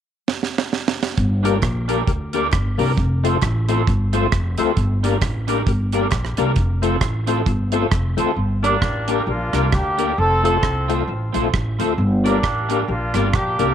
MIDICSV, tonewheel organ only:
0, 0, Header, 1, 2, 480
1, 0, Start_track
1, 0, Key_signature, -2, "minor"
1, 0, Tempo, 450113
1, 1252, Time_signature, 4, 2, 24, 8
1, 14656, End_track
2, 0, Start_track
2, 0, Title_t, "Tonewheel organ"
2, 0, Program_c, 0, 16
2, 1534, Note_on_c, 0, 58, 92
2, 1541, Note_on_c, 0, 62, 82
2, 1545, Note_on_c, 0, 67, 80
2, 1549, Note_on_c, 0, 70, 104
2, 1682, Note_off_c, 0, 58, 0
2, 1686, Note_off_c, 0, 62, 0
2, 1688, Note_off_c, 0, 67, 0
2, 1690, Note_off_c, 0, 70, 0
2, 2007, Note_on_c, 0, 58, 88
2, 2010, Note_on_c, 0, 62, 78
2, 2016, Note_on_c, 0, 67, 85
2, 2018, Note_on_c, 0, 70, 97
2, 2158, Note_off_c, 0, 58, 0
2, 2160, Note_off_c, 0, 62, 0
2, 2163, Note_off_c, 0, 67, 0
2, 2164, Note_off_c, 0, 70, 0
2, 2210, Note_on_c, 0, 67, 38
2, 2211, Note_on_c, 0, 70, 45
2, 2265, Note_off_c, 0, 67, 0
2, 2265, Note_off_c, 0, 70, 0
2, 2486, Note_on_c, 0, 58, 93
2, 2493, Note_on_c, 0, 62, 78
2, 2497, Note_on_c, 0, 67, 78
2, 2498, Note_on_c, 0, 70, 104
2, 2637, Note_off_c, 0, 58, 0
2, 2641, Note_off_c, 0, 62, 0
2, 2643, Note_off_c, 0, 67, 0
2, 2643, Note_off_c, 0, 70, 0
2, 2961, Note_on_c, 0, 58, 99
2, 2964, Note_on_c, 0, 62, 91
2, 2971, Note_on_c, 0, 67, 87
2, 2973, Note_on_c, 0, 70, 107
2, 3114, Note_off_c, 0, 58, 0
2, 3116, Note_off_c, 0, 62, 0
2, 3119, Note_off_c, 0, 67, 0
2, 3120, Note_off_c, 0, 70, 0
2, 3452, Note_on_c, 0, 57, 87
2, 3453, Note_on_c, 0, 60, 82
2, 3460, Note_on_c, 0, 65, 82
2, 3465, Note_on_c, 0, 69, 96
2, 3599, Note_off_c, 0, 57, 0
2, 3600, Note_off_c, 0, 60, 0
2, 3603, Note_off_c, 0, 65, 0
2, 3605, Note_off_c, 0, 69, 0
2, 3930, Note_on_c, 0, 57, 89
2, 3934, Note_on_c, 0, 60, 82
2, 3937, Note_on_c, 0, 65, 89
2, 3940, Note_on_c, 0, 69, 102
2, 4078, Note_off_c, 0, 57, 0
2, 4080, Note_off_c, 0, 60, 0
2, 4081, Note_off_c, 0, 65, 0
2, 4083, Note_off_c, 0, 69, 0
2, 4135, Note_on_c, 0, 69, 47
2, 4137, Note_on_c, 0, 65, 44
2, 4186, Note_off_c, 0, 65, 0
2, 4186, Note_off_c, 0, 69, 0
2, 4403, Note_on_c, 0, 57, 90
2, 4408, Note_on_c, 0, 60, 85
2, 4412, Note_on_c, 0, 65, 86
2, 4419, Note_on_c, 0, 69, 107
2, 4554, Note_off_c, 0, 57, 0
2, 4556, Note_off_c, 0, 60, 0
2, 4559, Note_off_c, 0, 65, 0
2, 4562, Note_off_c, 0, 69, 0
2, 4887, Note_on_c, 0, 57, 98
2, 4892, Note_on_c, 0, 60, 95
2, 4897, Note_on_c, 0, 65, 89
2, 4901, Note_on_c, 0, 69, 113
2, 5035, Note_off_c, 0, 57, 0
2, 5038, Note_off_c, 0, 60, 0
2, 5040, Note_off_c, 0, 65, 0
2, 5042, Note_off_c, 0, 69, 0
2, 5370, Note_on_c, 0, 58, 87
2, 5375, Note_on_c, 0, 62, 89
2, 5380, Note_on_c, 0, 67, 79
2, 5383, Note_on_c, 0, 70, 94
2, 5517, Note_off_c, 0, 58, 0
2, 5519, Note_off_c, 0, 62, 0
2, 5522, Note_off_c, 0, 67, 0
2, 5523, Note_off_c, 0, 70, 0
2, 5845, Note_on_c, 0, 58, 95
2, 5852, Note_on_c, 0, 62, 85
2, 5855, Note_on_c, 0, 67, 82
2, 5857, Note_on_c, 0, 70, 102
2, 5994, Note_off_c, 0, 58, 0
2, 5997, Note_off_c, 0, 62, 0
2, 5999, Note_off_c, 0, 67, 0
2, 6000, Note_off_c, 0, 70, 0
2, 6052, Note_on_c, 0, 70, 47
2, 6053, Note_on_c, 0, 67, 43
2, 6103, Note_off_c, 0, 67, 0
2, 6103, Note_off_c, 0, 70, 0
2, 6326, Note_on_c, 0, 58, 91
2, 6331, Note_on_c, 0, 62, 88
2, 6334, Note_on_c, 0, 67, 87
2, 6340, Note_on_c, 0, 70, 97
2, 6475, Note_off_c, 0, 58, 0
2, 6477, Note_off_c, 0, 62, 0
2, 6479, Note_off_c, 0, 67, 0
2, 6481, Note_off_c, 0, 70, 0
2, 6802, Note_on_c, 0, 58, 100
2, 6804, Note_on_c, 0, 62, 89
2, 6812, Note_on_c, 0, 67, 96
2, 6813, Note_on_c, 0, 70, 115
2, 6953, Note_off_c, 0, 58, 0
2, 6953, Note_off_c, 0, 62, 0
2, 6958, Note_off_c, 0, 67, 0
2, 6958, Note_off_c, 0, 70, 0
2, 7273, Note_on_c, 0, 57, 92
2, 7275, Note_on_c, 0, 60, 78
2, 7280, Note_on_c, 0, 65, 82
2, 7287, Note_on_c, 0, 69, 97
2, 7428, Note_off_c, 0, 57, 0
2, 7429, Note_off_c, 0, 60, 0
2, 7432, Note_off_c, 0, 65, 0
2, 7435, Note_off_c, 0, 69, 0
2, 7759, Note_on_c, 0, 57, 89
2, 7765, Note_on_c, 0, 60, 86
2, 7766, Note_on_c, 0, 65, 83
2, 7771, Note_on_c, 0, 69, 93
2, 7912, Note_off_c, 0, 57, 0
2, 7915, Note_off_c, 0, 60, 0
2, 7915, Note_off_c, 0, 65, 0
2, 7918, Note_off_c, 0, 69, 0
2, 7961, Note_on_c, 0, 65, 42
2, 7965, Note_on_c, 0, 69, 45
2, 8018, Note_off_c, 0, 65, 0
2, 8020, Note_off_c, 0, 69, 0
2, 8233, Note_on_c, 0, 57, 86
2, 8240, Note_on_c, 0, 60, 84
2, 8242, Note_on_c, 0, 65, 82
2, 8250, Note_on_c, 0, 69, 104
2, 8389, Note_off_c, 0, 57, 0
2, 8392, Note_off_c, 0, 60, 0
2, 8393, Note_off_c, 0, 65, 0
2, 8397, Note_off_c, 0, 69, 0
2, 8711, Note_on_c, 0, 57, 101
2, 8715, Note_on_c, 0, 60, 86
2, 8719, Note_on_c, 0, 65, 90
2, 8724, Note_on_c, 0, 69, 106
2, 8868, Note_off_c, 0, 57, 0
2, 8871, Note_off_c, 0, 60, 0
2, 8873, Note_off_c, 0, 65, 0
2, 8875, Note_off_c, 0, 69, 0
2, 9199, Note_on_c, 0, 58, 81
2, 9203, Note_on_c, 0, 62, 76
2, 9204, Note_on_c, 0, 67, 73
2, 9213, Note_on_c, 0, 70, 87
2, 9353, Note_off_c, 0, 58, 0
2, 9355, Note_off_c, 0, 62, 0
2, 9355, Note_off_c, 0, 67, 0
2, 9360, Note_off_c, 0, 70, 0
2, 9683, Note_on_c, 0, 58, 90
2, 9688, Note_on_c, 0, 62, 81
2, 9693, Note_on_c, 0, 67, 85
2, 9696, Note_on_c, 0, 70, 99
2, 9836, Note_off_c, 0, 58, 0
2, 9838, Note_off_c, 0, 62, 0
2, 9841, Note_off_c, 0, 67, 0
2, 9842, Note_off_c, 0, 70, 0
2, 9892, Note_on_c, 0, 70, 43
2, 9893, Note_on_c, 0, 67, 39
2, 9945, Note_off_c, 0, 70, 0
2, 9946, Note_off_c, 0, 67, 0
2, 10166, Note_on_c, 0, 58, 91
2, 10171, Note_on_c, 0, 62, 79
2, 10172, Note_on_c, 0, 67, 83
2, 10177, Note_on_c, 0, 70, 93
2, 10318, Note_off_c, 0, 58, 0
2, 10320, Note_off_c, 0, 62, 0
2, 10321, Note_off_c, 0, 67, 0
2, 10323, Note_off_c, 0, 70, 0
2, 10644, Note_on_c, 0, 58, 96
2, 10648, Note_on_c, 0, 62, 93
2, 10654, Note_on_c, 0, 67, 88
2, 10655, Note_on_c, 0, 70, 100
2, 10798, Note_off_c, 0, 58, 0
2, 10799, Note_off_c, 0, 62, 0
2, 10803, Note_off_c, 0, 67, 0
2, 10803, Note_off_c, 0, 70, 0
2, 11128, Note_on_c, 0, 57, 86
2, 11134, Note_on_c, 0, 60, 73
2, 11135, Note_on_c, 0, 65, 82
2, 11139, Note_on_c, 0, 69, 99
2, 11280, Note_off_c, 0, 57, 0
2, 11283, Note_off_c, 0, 60, 0
2, 11284, Note_off_c, 0, 65, 0
2, 11286, Note_off_c, 0, 69, 0
2, 11614, Note_on_c, 0, 57, 94
2, 11616, Note_on_c, 0, 60, 83
2, 11621, Note_on_c, 0, 65, 87
2, 11629, Note_on_c, 0, 69, 95
2, 11764, Note_off_c, 0, 57, 0
2, 11765, Note_off_c, 0, 60, 0
2, 11767, Note_off_c, 0, 65, 0
2, 11771, Note_off_c, 0, 69, 0
2, 11828, Note_on_c, 0, 65, 38
2, 11828, Note_on_c, 0, 69, 46
2, 11876, Note_off_c, 0, 65, 0
2, 11876, Note_off_c, 0, 69, 0
2, 12094, Note_on_c, 0, 57, 87
2, 12098, Note_on_c, 0, 60, 84
2, 12101, Note_on_c, 0, 65, 77
2, 12109, Note_on_c, 0, 69, 97
2, 12245, Note_off_c, 0, 57, 0
2, 12247, Note_off_c, 0, 60, 0
2, 12248, Note_off_c, 0, 65, 0
2, 12252, Note_off_c, 0, 69, 0
2, 12577, Note_on_c, 0, 57, 99
2, 12582, Note_on_c, 0, 60, 91
2, 12586, Note_on_c, 0, 65, 90
2, 12589, Note_on_c, 0, 69, 99
2, 12726, Note_off_c, 0, 57, 0
2, 12729, Note_off_c, 0, 60, 0
2, 12731, Note_off_c, 0, 65, 0
2, 12733, Note_off_c, 0, 69, 0
2, 13059, Note_on_c, 0, 58, 93
2, 13062, Note_on_c, 0, 62, 85
2, 13064, Note_on_c, 0, 67, 80
2, 13070, Note_on_c, 0, 70, 93
2, 13208, Note_off_c, 0, 58, 0
2, 13210, Note_off_c, 0, 62, 0
2, 13211, Note_off_c, 0, 67, 0
2, 13214, Note_off_c, 0, 70, 0
2, 13540, Note_on_c, 0, 58, 88
2, 13545, Note_on_c, 0, 62, 78
2, 13549, Note_on_c, 0, 67, 83
2, 13553, Note_on_c, 0, 70, 102
2, 13689, Note_off_c, 0, 58, 0
2, 13692, Note_off_c, 0, 62, 0
2, 13694, Note_off_c, 0, 67, 0
2, 13696, Note_off_c, 0, 70, 0
2, 13747, Note_on_c, 0, 70, 45
2, 13748, Note_on_c, 0, 67, 39
2, 13798, Note_off_c, 0, 67, 0
2, 13798, Note_off_c, 0, 70, 0
2, 14016, Note_on_c, 0, 58, 91
2, 14023, Note_on_c, 0, 62, 78
2, 14026, Note_on_c, 0, 67, 83
2, 14031, Note_on_c, 0, 70, 104
2, 14167, Note_off_c, 0, 58, 0
2, 14171, Note_off_c, 0, 62, 0
2, 14172, Note_off_c, 0, 67, 0
2, 14175, Note_off_c, 0, 70, 0
2, 14491, Note_on_c, 0, 58, 98
2, 14497, Note_on_c, 0, 62, 82
2, 14500, Note_on_c, 0, 67, 88
2, 14506, Note_on_c, 0, 70, 112
2, 14645, Note_off_c, 0, 58, 0
2, 14648, Note_off_c, 0, 62, 0
2, 14650, Note_off_c, 0, 67, 0
2, 14653, Note_off_c, 0, 70, 0
2, 14656, End_track
0, 0, End_of_file